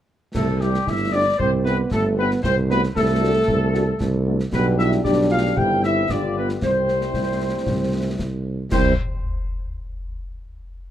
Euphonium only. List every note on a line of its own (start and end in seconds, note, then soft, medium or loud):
0.36 0.47 A3 medium
0.62 0.88 G3 medium
0.87 1.13 E4 medium
1.13 1.25 D4 medium
1.40 1.66 C4 medium
1.65 1.91 B3 medium
1.92 2.16 A3 medium
2.17 2.41 B3 medium
2.43 2.55 C4 medium
2.70 2.82 B3 medium
2.96 4.23 A3 medium
4.53 4.77 B3 medium
4.78 5.03 E4 medium
5.04 5.29 D4 medium
5.31 5.43 F4 medium
5.57 5.81 G4 medium
5.84 6.08 E4 medium
6.10 6.21 D4 medium
6.37 6.48 B3 medium
6.62 8.15 C4 medium
8.71 8.93 C4 medium